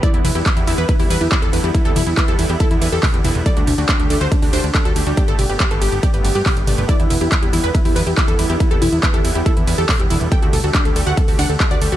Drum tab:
RD |--x---x---x---x-|--x---x---x---x-|--x---x---x---x-|--x---x---x---x-|
HH |xxoxxxoxxooxxxox|xxoxxxoxxxoxoxox|xxoxxxoxxooxxxox|xxoxxxoxxxoxoxox|
CP |----x-------x---|----x-------x---|----x-------x---|----x-------x---|
T2 |--o-------------|--o---------o-oo|--o-------------|--o---------o-oo|
BD |o---o---o---o---|o---o---o---o---|o---o---o---o---|o---o---o---o---|

RD |--x---x---x---x-|--x---x---x---x-|--x---x---x---x-|
HH |xxoxxxoxxooxxxox|xxoxxxoxxxoxoxox|xxoxxxoxxooxxxox|
CP |----x-------x---|----x-------x---|----x-------x---|
T2 |--o-------------|--o---------o-oo|--o-------------|
BD |o---o---o---o---|o---o---o---o---|o---o---o---o---|